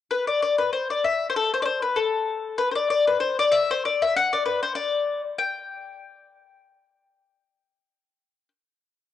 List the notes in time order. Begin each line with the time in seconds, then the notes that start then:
0.11 B4
0.27 D5
0.42 D5
0.58 B4
0.73 C5
0.90 D5
1.04 E5
1.30 C5
1.36 A4
1.54 C5
1.62 C5 D5
1.82 B4
1.96 A4
2.58 B4
2.71 C5
2.75 D5
2.90 D5
3.07 B4
3.20 C5
3.39 D5
3.52 E5
3.71 C5
3.85 D5
4.02 E5
4.17 F#5
4.33 D5
4.46 B4
4.63 C5
4.75 D5
5.38 G5